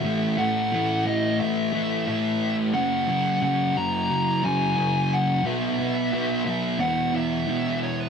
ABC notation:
X:1
M:4/4
L:1/16
Q:1/4=89
K:F#dor
V:1 name="Lead electric guitar"
e2 f4 d2 e4 e3 z | f4 f2 ^a4 g4 f2 | e6 e2 f2 e4 c B |]
V:2 name="Distorted electric guitar" clef=bass
[A,,E,A,]2 [E,A,]2 [A,,E,A,]2 [E,A,]4 [E,A,]2 [A,,E,A,]4 | [F,,C,F,]2 [C,F,]2 [F,,C,F,]2 [C,F,]4 [C,F,]2 [F,,C,F,]4 | [B,,F,B,]2 [F,B,]2 [B,,F,B,]2 [F,B,]2 [E,,B,,E,]2 [B,,E,]2 [E,,B,,E,]4 |]